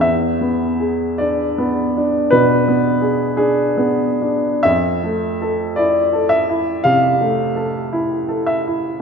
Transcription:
\new Staff \with { instrumentName = "Upright piano" } { \time 4/4 \key e \phrygian \tempo 4 = 54 << { e''4 d''4 b'4 gis'4 | e''4 d''8 e''8 f''4. e''8 | } \\ { \tuplet 3/2 { e,8 b8 gis'8 d'8 b8 d'8 b,8 b8 gis'8 d'8 b8 d'8 } | \tuplet 3/2 { f,8 a8 a'8 e'8 a'8 e'8 c8 a8 a'8 e'8 a'8 e'8 } | } >> }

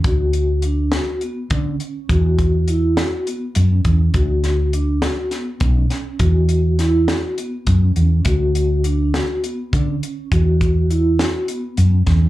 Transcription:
<<
  \new Staff \with { instrumentName = "Vibraphone" } { \time 7/8 \key d \lydian \tempo 4 = 102 fis'4 d'8 fis'8 b8 cis'4 | fis'4 e'8 fis'8 b8 cis'4 | fis'4 d'8 fis'8 b8 cis'4 | fis'4 e'8 fis'8 b8 cis'4 |
fis'4 d'8 fis'8 b8 cis'4 | fis'4 e'8 fis'8 b8 cis'4 | }
  \new Staff \with { instrumentName = "Fretless electric bass" } { \clef bass \time 7/8 \key d \lydian d,2 r8 d8 r8 | e,2 r8 fis,8 e,8 | d,2 r8 b,,8 r8 | e,2 r8 fis,8 e,8 |
d,2 r8 d8 r8 | e,2 r8 fis,8 e,8 | }
  \new DrumStaff \with { instrumentName = "Drums" } \drummode { \time 7/8 <hh bd>8 hh8 hh8 <hh sn>8 hh8 <hh bd>8 hh8 | <hh bd>8 <hh bd>8 hh8 <hh sn>8 hh8 hh8 <hh bd>8 | <hh bd>8 <hh sn>8 hh8 <hh sn>8 <hh sn>8 <hh bd>8 <hh sn>8 | <hh bd>8 hh8 <hh sn>8 <hh sn>8 hh8 <hh bd>8 hh8 |
<hh bd>8 hh8 hh8 <hh sn>8 hh8 <hh bd>8 hh8 | <hh bd>8 <hh bd>8 hh8 <hh sn>8 hh8 hh8 <hh bd sn>8 | }
>>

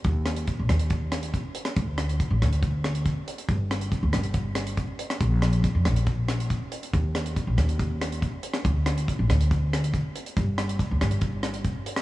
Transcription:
<<
  \new Staff \with { instrumentName = "Upright bass" } { \clef bass \time 4/4 \key ees \lydian \tempo 4 = 140 ees,4~ ees,16 bes,,16 ees,2 r8 | d,4~ d,16 a,,16 d,2 r8 | g,,4~ g,,16 d,16 g,,2 r8 | bes,,4~ bes,,16 f,16 bes,,2 r8 |
ees,4~ ees,16 bes,,16 ees,2 r8 | d,4~ d,16 a,,16 d,2 r8 | g,,4~ g,,16 d,16 g,,2 r8 | }
  \new DrumStaff \with { instrumentName = "Drums" } \drummode { \time 4/4 <hh bd>8 <hh ss>16 hh16 <hh bd>8 <hh ss>16 hh16 <hh bd>8 <hh ss>16 hh16 <hh bd>8 hh16 <hh ss>16 | <hh bd>8 <hh ss>16 hh16 <hh bd>8 <hh ss>16 hh16 <hh bd>8 <hh ss>16 hh16 <hh bd>8 hh16 hh16 | <hh bd>8 <hh ss>16 hh16 <hh bd>8 <hh ss>16 hh16 <hh bd>8 <hh ss>16 hh16 <hh bd>8 hh16 <hh ss>16 | <hh bd>8 <hh ss>16 hh16 <hh bd>8 <hh ss>16 hh16 <hh bd>8 <hh ss>16 hh16 <hh bd>8 hh16 hh16 |
<hh bd>8 <hh ss>16 hh16 <hh bd>8 <hh ss>16 hh16 <hh bd>8 <hh ss>16 hh16 <hh bd>8 hh16 <hh ss>16 | <hh bd>8 <hh ss>16 hh16 <hh bd>8 <hh ss>16 hh16 <hh bd>8 <hh ss>16 hh16 <hh bd>8 hh16 hh16 | <hh bd>8 <hh ss>16 hh16 <hh bd>8 <hh ss>16 hh16 <hh bd>8 <hh ss>16 hh16 <hh bd>8 hh16 <hh ss>16 | }
>>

